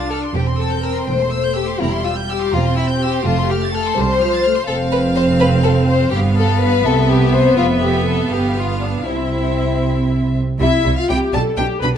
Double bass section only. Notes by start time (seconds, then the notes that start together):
Already playing: C2
0.34 E1
1.07 E1
1.80 E1
2.53 E1
3.25 F1
3.97 C2
4.68 F1
6.12 G1
6.84 C2
7.57 F1
8.31 G1
9.06 C2
10.60 C2
10.85 C2
11.09 C2
11.33 B1
11.57 B1
11.82 B1